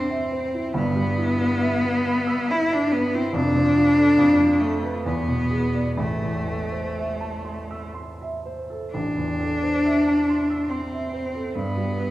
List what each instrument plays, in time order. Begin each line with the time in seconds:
Already playing: grand piano A1 E2 E4 C5 E5 C6 E6, cello C4
0.10 grand piano E5
0.32 grand piano C5
0.54 grand piano E4
0.74 grand piano G1 G2, cello B3
0.96 grand piano G3
1.18 grand piano E4
1.39 grand piano B4
1.60 grand piano E5
1.84 grand piano B4
2.06 grand piano B5
2.27 grand piano E6
2.48 cello E4, grand piano B5
2.71 cello D4, grand piano E5
2.92 cello B3, grand piano B4
3.14 cello C4, grand piano E4
3.33 grand piano F1 F2, cello D4
3.56 grand piano F3
3.76 grand piano F4
3.97 grand piano A4
4.18 grand piano F2
4.39 grand piano F3
4.60 cello A3, grand piano A4
4.83 grand piano B4
5.05 grand piano E2, cello B3
5.28 grand piano B2
5.51 grand piano G#4
5.74 grand piano D5
5.96 grand piano A1, cello A3
6.21 grand piano E2
6.47 grand piano A4
6.71 grand piano C5
6.96 grand piano E5
7.20 grand piano A5
7.45 grand piano C6
7.71 grand piano E6
7.94 grand piano C6
8.21 grand piano E5
8.45 grand piano C5
8.70 grand piano A4
8.91 grand piano A1, cello D4
9.17 grand piano E2
9.40 grand piano A4
9.62 grand piano C5
9.85 grand piano E5
10.07 grand piano A5
10.30 grand piano C6
10.50 grand piano E6
10.69 cello C4, grand piano C6
10.93 grand piano E5
11.13 grand piano C5
11.35 grand piano A4
11.54 grand piano G2, cello B3
11.77 grand piano G3
11.97 grand piano B4